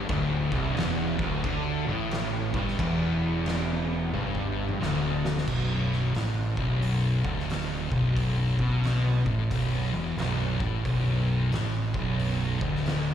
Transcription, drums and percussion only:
0.09 kick loud
0.09 crash medium
0.52 kick loud
0.77 snare loud
0.77 crash medium
1.19 kick loud
1.44 kick loud
1.44 crash medium
2.11 snare loud
2.11 crash medium
2.54 kick loud
2.68 snare soft
2.79 kick loud
2.79 crash medium
3.46 snare loud
3.46 crash medium
4.14 high tom medium
4.35 kick medium
4.69 mid tom medium
4.82 snare medium
5.25 snare loud
5.37 snare loud
5.48 kick loud
5.48 crash loud
5.92 snare soft
6.15 snare loud
6.15 open hi-hat soft
6.57 kick loud
6.82 open hi-hat medium
7.25 kick loud
7.39 snare soft
7.50 snare loud
7.50 open hi-hat medium
7.92 kick loud
8.17 kick loud
8.17 open hi-hat medium
8.59 kick medium
8.84 snare loud
8.84 open hi-hat medium
9.26 kick loud
9.51 kick loud
9.51 open hi-hat medium
10.18 snare loud
10.18 open hi-hat soft
10.60 kick loud
10.85 kick loud
10.85 open hi-hat medium
11.52 snare medium
11.52 open hi-hat soft
11.94 kick loud
12.19 open hi-hat soft
12.61 kick loud
12.76 snare soft
12.86 snare loud
12.86 open hi-hat soft

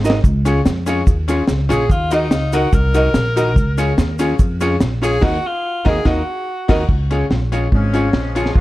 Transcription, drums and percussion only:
0.05 cabasa medium
0.10 snare loud
0.24 kick loud
0.24 cabasa soft
0.46 ride medium
0.46 cabasa medium
0.66 snare loud
0.66 cabasa medium
0.87 ride medium
0.87 cabasa medium
1.07 kick loud
1.07 cabasa medium
1.28 ride medium
1.28 cabasa medium
1.48 snare loud
1.48 cabasa medium
1.70 ride medium
1.70 cabasa medium
1.90 kick loud
1.90 cabasa soft
2.11 ride medium
2.11 cabasa medium
2.31 snare loud
2.31 cabasa medium
2.53 ride medium
2.53 cabasa medium
2.73 kick loud
2.73 cabasa medium
2.94 ride medium
2.94 cabasa medium
3.14 snare loud
3.14 cabasa medium
3.37 ride medium
3.37 cabasa medium
3.56 kick loud
3.56 cabasa soft
3.78 ride medium
3.78 cabasa medium
3.98 snare loud
3.98 cabasa medium
4.19 ride medium
4.19 cabasa medium
4.39 kick loud
4.39 cabasa medium
4.61 ride medium
4.61 cabasa medium
4.80 snare loud
4.80 cabasa medium
5.03 open hi-hat medium
5.03 ride medium
5.03 cabasa medium
5.22 kick loud
5.22 snare loud
5.22 crash medium
5.86 kick loud
5.86 snare loud
6.06 kick loud
6.06 snare loud
6.69 kick loud
6.69 snare loud
6.69 crash medium
6.89 kick loud
7.11 closed hi-hat medium
7.31 snare loud
7.52 closed hi-hat medium
7.72 kick loud
7.94 closed hi-hat medium
8.13 snare loud
8.36 closed hi-hat medium
8.46 snare medium
8.56 kick loud

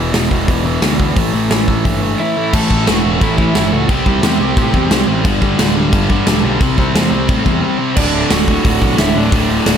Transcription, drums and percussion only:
0.14 snare loud
0.14 open hi-hat medium
0.31 kick medium
0.48 kick loud
0.48 open hi-hat medium
0.82 snare loud
0.82 open hi-hat medium
1.00 kick medium
1.16 kick loud
1.16 open hi-hat medium
1.51 snare loud
1.51 open hi-hat medium
1.68 kick medium
1.85 kick medium
1.85 open hi-hat medium
2.54 kick loud
2.54 crash loud
2.54 crash medium
2.71 kick medium
2.87 snare loud
2.87 crash medium
3.21 kick loud
3.21 crash medium
3.38 kick medium
3.55 snare loud
3.55 crash medium
3.89 kick loud
3.89 crash medium
4.06 kick medium
4.23 snare loud
4.23 crash medium
4.57 kick loud
4.57 crash medium
4.74 kick medium
4.91 snare loud
4.91 crash medium
5.25 kick loud
5.25 crash medium
5.42 kick medium
5.59 snare loud
5.59 crash medium
5.93 kick loud
5.93 crash medium
6.10 kick medium
6.27 snare loud
6.27 crash medium
6.61 kick loud
6.61 crash medium
6.78 kick medium
6.96 snare loud
6.96 crash medium
7.29 kick loud
7.29 crash medium
7.46 kick medium
7.96 kick loud
7.96 crash loud
8.31 snare loud
8.31 open hi-hat medium
8.48 kick medium
8.65 kick loud
8.65 open hi-hat medium
8.82 kick medium
8.98 snare loud
8.98 open hi-hat medium
9.32 kick loud
9.32 open hi-hat medium
9.66 snare loud
9.66 open hi-hat medium

